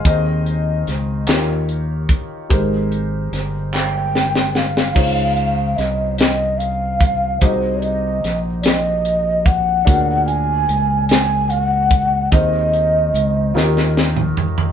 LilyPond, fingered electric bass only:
\new Staff \with { instrumentName = "Fingered electric bass" } { \clef bass \time 6/8 \key aes \major \tempo 4. = 49 ees,4 des,8 ees,4 r8 | aes,,4 g,,2 | des,4 c,2 | c,4 bes,,2 |
d,4 cis,2 | ees,4 des,8 ees,4 r8 | }